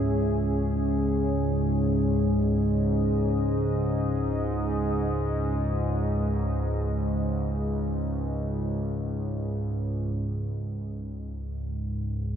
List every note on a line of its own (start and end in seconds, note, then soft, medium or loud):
0.00 10.17 C#2 medium
0.00 10.16 G#2 medium
0.00 10.17 C#4 medium
0.00 10.17 G#4 medium
0.00 1.36 E5 medium
0.98 10.17 D#5 medium
10.17 12.36 C#2 medium
10.17 12.36 G#2 medium